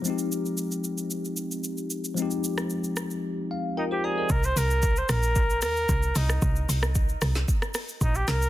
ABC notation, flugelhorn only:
X:1
M:4/4
L:1/16
Q:1/4=113
K:Cm
V:1 name="Flugelhorn"
z16 | z12 E G A2 | B c B3 c B4 B4 E2- | E2 z8 z2 E G B2 |]